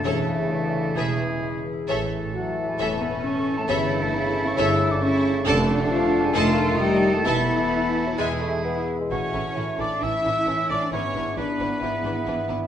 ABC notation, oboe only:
X:1
M:4/4
L:1/8
Q:1/4=133
K:A
V:1 name="Oboe"
A4 G3 z | A8- | A8 | A8- |
A4 G3 z | c3 d e3 d | c2 B4- B z |]